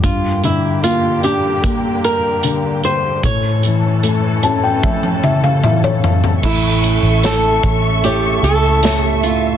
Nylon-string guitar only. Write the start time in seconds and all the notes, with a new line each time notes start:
0.04 F4
0.45 E4
0.84 F4
1.24 G4
2.05 A#4
2.85 C5
3.25 C#5
6.45 E4
7.25 A4
8.04 G4
8.44 A4
9.04 G4
9.24 F4